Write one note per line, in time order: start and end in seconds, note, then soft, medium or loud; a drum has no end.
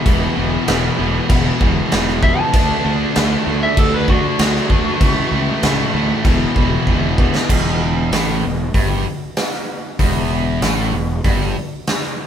0.05 0.25 E1 loud
0.05 0.35 E2 medium
0.05 0.35 B2 loud
0.05 0.36 E3 loud
0.05 kick loud
0.05 crash medium
0.36 0.56 E1 medium
0.36 0.66 E2 medium
0.36 0.66 B2 medium
0.36 0.67 E3 loud
0.67 0.87 E1 medium
0.67 0.97 E2 medium
0.67 0.98 B2 loud
0.67 0.99 E3 loud
0.67 snare loud
0.67 crash medium
0.98 1.18 E1 medium
0.98 1.28 E2 medium
0.98 1.29 B2 medium
0.98 1.30 E3 loud
1.30 1.49 E1 loud
1.30 1.60 E2 medium
1.30 1.61 B2 loud
1.30 1.62 E3 loud
1.30 kick loud
1.30 crash medium
1.61 1.80 E1 loud
1.61 1.90 E2 medium
1.61 1.91 B2 loud
1.61 1.91 E3 loud
1.61 kick medium
1.91 2.30 E1 loud
1.91 2.21 E2 medium
1.91 2.22 B2 loud
1.91 2.23 E3 loud
1.91 snare loud
1.91 crash medium
2.08 snare soft
2.23 2.52 E2 medium
2.23 2.52 B2 medium
2.23 2.52 E3 loud
2.23 2.39 E5 loud
2.23 kick loud
2.39 3.58 A5 loud
2.53 2.73 D2 medium
2.53 2.82 D3 loud
2.53 2.83 A3 medium
2.53 2.84 D4 loud
2.53 kick loud
2.53 crash medium
2.83 3.04 D2 medium
2.83 3.13 D3 medium
2.83 3.13 A3 loud
2.83 3.14 D4 loud
3.14 3.35 D2 loud
3.14 3.44 D3 loud
3.14 3.45 A3 medium
3.14 3.45 D4 loud
3.14 snare loud
3.14 crash medium
3.45 3.66 D2 loud
3.45 3.75 D3 loud
3.45 3.76 A3 medium
3.45 3.77 D4 loud
3.63 3.77 E5 medium
3.76 4.16 D2 loud
3.76 4.06 D3 medium
3.76 4.07 A3 medium
3.76 4.08 D4 loud
3.76 3.94 A4 loud
3.76 kick loud
3.76 crash medium
3.94 4.09 B4 medium
4.08 4.37 D3 medium
4.08 4.38 A3 loud
4.08 4.39 D4 loud
4.08 5.91 F#4 loud
4.08 kick medium
4.39 4.58 D2 loud
4.39 4.69 D3 medium
4.39 4.69 A3 medium
4.39 4.70 D4 medium
4.39 snare loud
4.39 crash medium
4.56 snare soft
4.70 4.89 D2 medium
4.70 4.99 D3 medium
4.70 4.99 A3 medium
4.70 5.00 D4 medium
4.70 kick loud
5.00 5.20 C#2 medium
5.00 5.31 A2 medium
5.00 5.31 E3 loud
5.00 5.32 A3 loud
5.00 kick loud
5.00 crash medium
5.31 5.51 C#2 loud
5.31 5.63 A2 medium
5.31 5.64 E3 medium
5.31 5.64 A3 loud
5.63 5.82 C#2 loud
5.63 5.93 A2 loud
5.63 5.94 E3 loud
5.63 5.95 A3 loud
5.63 snare loud
5.63 crash medium
5.94 6.13 D2 medium
5.94 6.23 A2 medium
5.94 6.24 E3 medium
5.94 6.24 A3 medium
6.25 6.44 E1 loud
6.25 6.56 E2 medium
6.25 6.57 B2 medium
6.25 6.58 E3 loud
6.25 kick loud
6.25 crash medium
6.56 6.75 E1 medium
6.56 6.87 E2 medium
6.56 6.88 B2 loud
6.56 6.88 E3 loud
6.56 kick medium
6.87 7.26 E1 medium
6.87 7.17 E2 medium
6.87 7.18 B2 medium
6.87 7.19 E3 loud
6.87 kick medium
7.18 7.48 E2 medium
7.18 7.48 B2 medium
7.18 7.48 E3 medium
7.18 kick loud
7.35 snare medium
7.49 8.08 E1 medium
7.49 8.11 E2 loud
7.49 kick loud
7.49 crash medium
8.11 8.40 A1 loud
8.11 8.42 A2 medium
8.11 snare loud
8.11 open hi-hat medium
8.43 8.72 E1 medium
8.43 8.68 E2 medium
8.74 9.03 G1 medium
8.74 9.05 G2 medium
8.74 kick loud
8.74 open hi-hat medium
9.36 snare loud
9.36 open hi-hat medium
9.53 snare soft
9.99 10.58 E1 medium
9.99 10.61 E2 loud
9.99 kick medium
9.99 open hi-hat medium
10.61 10.90 A1 loud
10.61 10.92 A2 medium
10.61 snare loud
10.61 open hi-hat medium
10.92 11.22 E1 medium
10.92 11.18 E2 medium
11.24 11.53 G1 medium
11.24 11.55 G2 loud
11.24 kick loud
11.24 open hi-hat medium
11.87 snare loud
11.87 open hi-hat medium
12.03 snare soft